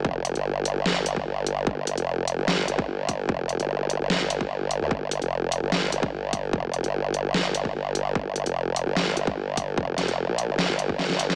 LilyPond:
<<
  \new Staff \with { instrumentName = "Wobble bass" } { \clef bass \time 4/4 \key c \minor \tempo 4 = 148 f,,8. g,,2 g,,16 g,,4 | g,,8. f,,4 g,,8. g,,8 g,,4 | f,,8. g,,4 g,,8 g,,4. d,16 | g,,8. f,,4 g,,8. g,,8 g,,4 |
f,,8. g,,2 g,,16 g,,4 | g,,8. f,,4 g,,8. g,,8 g,,4 | f,,8. f,,8 bes,,8 g,,8 g,,4. aes,,16 | }
  \new DrumStaff \with { instrumentName = "Drums" } \drummode { \time 4/4 bd8 hh16 hh16 r8 hh8 sn8 hh16 bd16 r8 hh8 | bd8 hh16 hh16 r8 hh8 sn8 hh16 bd16 r8 <hh bd>8 | bd8 hh16 hh16 r8 hh8 sn8 hh16 bd16 r8 hh8 | bd8 hh16 hh16 r8 hh8 sn8 hh16 bd16 r8 <hh bd>8 |
bd8 hh16 hh16 r8 hh8 sn8 hh16 bd16 r8 hh8 | bd8 hh16 hh16 r8 hh8 sn8 hh16 bd16 r8 <hh bd>8 | bd8 <hh sn>16 hh16 r8 hh8 sn8 hh16 bd16 sn16 sn16 hh16 sn16 | }
>>